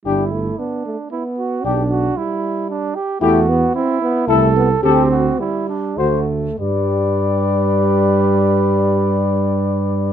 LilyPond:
<<
  \new Staff \with { instrumentName = "Cornet" } { \time 3/4 \key g \major \tempo 4 = 108 g'8 r2 r8 | g'8 r2 r8 | g'8 r4. a'8 r8 | a'8 r4. c''8 r8 |
d''2.~ | d''2. | }
  \new Staff \with { instrumentName = "Flugelhorn" } { \time 3/4 \key g \major e'4 d'4 e'8 fis'8 | g'8 fis'8 e'4 d'8 g'8 | fis'4 e'4 a'4 | g'8 fis'8 e'8 d'8 fis'8 r8 |
b'2.~ | b'2. | }
  \new Staff \with { instrumentName = "French horn" } { \time 3/4 \key g \major d'8 r2 r8 | d'8 r2 r8 | e'8 r4. e'8 r8 | g'8 r4. fis'8 r8 |
g'2.~ | g'2. | }
  \new Staff \with { instrumentName = "Trombone" } { \time 3/4 \key g \major g8 a8 b8 a8 b4 | d'4 g4. r8 | a8 b8 c'8 b8 a8 b8 | c'4 g4 a4 |
g2.~ | g2. | }
  \new Staff \with { instrumentName = "Tuba" } { \clef bass \time 3/4 \key g \major g,,4 r2 | b,,4 r2 | e,4 r4 c,4 | d,4 r4 d,4 |
g,2.~ | g,2. | }
>>